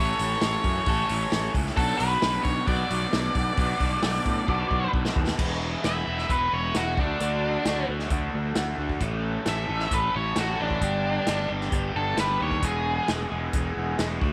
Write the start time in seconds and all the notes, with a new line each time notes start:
Already playing: A1 A2 E3 A3 C#5
0.00 C#4 A4
0.19 A1, open hi-hat
0.41 A1, snare, open hi-hat
0.64 F#2, kick, open hi-hat
0.86 A1 A2 E3 A3 C#4 A4, kick, open hi-hat
1.09 A1, open hi-hat
1.32 A1, snare, open hi-hat
1.54 C#2, kick, open hi-hat
1.66 snare
1.77 B1 B2 F#3 B3 D4 F#4 A4, kick, open hi-hat
1.98 B1 B4, open hi-hat
2.22 B1, snare, open hi-hat
2.44 B1 C#5, kick, open hi-hat
2.67 B1 B2 F#3 B3 D4 F#4 D5, kick, open hi-hat
2.90 B1, open hi-hat
3.13 B1, snare, open hi-hat
3.35 B1, kick, open hi-hat
3.57 B1 B2 F#3 B3 D4 F#4, kick, open hi-hat
3.80 B1, kick, open hi-hat
4.03 B1, snare, open hi-hat
4.25 A2, kick, open hi-hat
4.48 B1 B2 F#3 B3 D4 F#4, kick
4.71 B1, kick
4.93 B1, kick
5.05 snare
5.16 D#2, kick
5.27 snare
5.38 E1 E2 B2 E3 G#3 B3 E4, kick, crash
5.84 E1 E3 G#3 B3 E4 E5, snare, closed hi-hat
6.07 E1 E3 G#3 B3 E4
6.18 snare
6.29 E1 E3 G#3 B3 E4 B4, kick, closed hi-hat
6.53 E1 C#5
6.74 E1 E2 B2 E3 G#3 B3 E4 F#4, snare, closed hi-hat
6.97 D2 D3 A3 D4 F#4, kick
7.20 D2 D3 A3 D4 F#4, closed hi-hat
7.65 D2 D3 A3 D4 F#4, snare, closed hi-hat
7.88 D2 A3 D4 F#4
7.99 snare
8.10 D2 D3 A3 D4 F#4, kick, closed hi-hat
8.34 D2
8.55 D2 D3 A3 D4 F#4, snare, closed hi-hat
8.78 D2 A3 D4 F#4
8.89 kick
9.00 A1 A2 E3 A3 C#4 A4, kick, closed hi-hat
9.46 A1 E3 A3 C#4 A4 E5, snare, closed hi-hat
9.69 A1 A3 C#4 A4
9.79 snare
9.91 A1 E3 A3 C#4 A4 B4, kick, closed hi-hat
10.15 A1 C#5
10.36 A1 A2 E3 A3 C#4 F#4 A4, snare, closed hi-hat
10.60 A1 A3 C#4 D4 A4
10.70 kick
10.81 G1 G2 D3 G3 B3 D4 G4, kick, closed hi-hat
11.27 G1 G3 B3 D4 G4, snare, closed hi-hat
11.50 G1 G3 B3 D4 G4
11.61 snare
11.72 G1 G3 B3 D4 G4, kick, closed hi-hat
11.95 G1 A4
12.17 G1 G2 D3 G3 B3 D4 G4 B4, snare, closed hi-hat
12.40 D#2 G3 B3 D4 G4 C#5
12.51 kick
12.62 E1 E2 B2 E3 G#3 B3 G#4, kick, closed hi-hat
13.08 E1 E3 G#3 B3 G#4, snare, closed hi-hat
13.31 E1 E3 G#3 B3 G#4
13.53 E1 E3 G#3 B3 G#4, kick, closed hi-hat
13.77 E1
13.98 E1 E2 B2 E3 G#3 B3 G#4, snare, closed hi-hat
14.21 D2 D3 A3 D4 F#4, kick